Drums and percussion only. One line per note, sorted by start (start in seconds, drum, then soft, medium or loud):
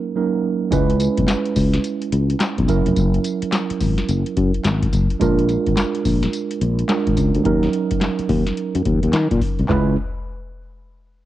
0.72 kick loud
0.72 closed hi-hat medium
0.72 tambourine medium
0.90 closed hi-hat medium
1.00 closed hi-hat medium
1.00 tambourine medium
1.18 kick medium
1.18 closed hi-hat medium
1.28 snare loud
1.28 clap loud
1.28 closed hi-hat medium
1.28 tambourine medium
1.46 closed hi-hat soft
1.56 kick medium
1.56 open hi-hat medium
1.56 tambourine medium
1.74 snare medium
1.74 closed hi-hat medium
1.84 closed hi-hat medium
1.84 tambourine medium
2.02 closed hi-hat soft
2.13 closed hi-hat medium
2.30 closed hi-hat soft
2.40 snare loud
2.40 clap medium
2.40 closed hi-hat medium
2.40 tambourine medium
2.58 kick medium
2.58 closed hi-hat medium
2.68 kick loud
2.68 closed hi-hat medium
2.68 tambourine medium
2.86 closed hi-hat medium
2.96 kick loud
2.96 closed hi-hat medium
2.96 tambourine medium
3.14 closed hi-hat medium
3.24 closed hi-hat medium
3.24 tambourine medium
3.42 closed hi-hat medium
3.52 snare loud
3.52 clap loud
3.52 closed hi-hat medium
3.52 tambourine loud
3.70 closed hi-hat medium
3.80 kick medium
3.80 open hi-hat medium
3.80 tambourine medium
3.98 snare medium
3.98 closed hi-hat medium
4.09 closed hi-hat medium
4.09 tambourine medium
4.26 closed hi-hat soft
4.37 kick loud
4.37 closed hi-hat medium
4.54 closed hi-hat soft
4.64 snare loud
4.64 clap loud
4.64 closed hi-hat medium
4.64 tambourine medium
4.82 kick loud
4.82 closed hi-hat medium
4.92 kick loud
4.92 closed hi-hat medium
4.92 tambourine medium
5.10 closed hi-hat medium
5.21 kick loud
5.21 closed hi-hat medium
5.21 tambourine medium
5.39 closed hi-hat medium
5.49 closed hi-hat medium
5.49 tambourine medium
5.66 kick medium
5.66 closed hi-hat medium
5.77 snare loud
5.77 clap medium
5.77 closed hi-hat medium
5.77 tambourine medium
5.95 closed hi-hat medium
6.05 kick loud
6.05 open hi-hat medium
6.05 tambourine medium
6.23 snare medium
6.23 closed hi-hat medium
6.33 closed hi-hat medium
6.33 tambourine medium
6.51 closed hi-hat soft
6.61 closed hi-hat medium
6.79 closed hi-hat soft
6.89 snare loud
6.89 clap loud
6.89 closed hi-hat medium
6.89 tambourine medium
7.07 kick loud
7.07 closed hi-hat soft
7.17 kick loud
7.17 closed hi-hat medium
7.17 tambourine medium
7.35 closed hi-hat medium
7.45 kick loud
7.45 closed hi-hat medium
7.63 snare medium
7.63 closed hi-hat medium
7.73 closed hi-hat medium
7.91 kick medium
7.91 closed hi-hat medium
8.01 snare loud
8.01 clap loud
8.01 closed hi-hat medium
8.19 closed hi-hat medium
8.29 kick medium
8.29 open hi-hat medium
8.47 snare medium
8.47 closed hi-hat medium
8.57 closed hi-hat medium
8.75 closed hi-hat soft
8.85 kick loud
8.85 closed hi-hat medium
9.03 closed hi-hat soft
9.13 snare loud
9.13 clap medium
9.13 closed hi-hat medium
9.31 kick loud
9.31 closed hi-hat soft
9.41 kick loud
9.41 open hi-hat medium
9.59 closed hi-hat medium
9.69 kick loud
9.69 clap medium
9.69 floor tom loud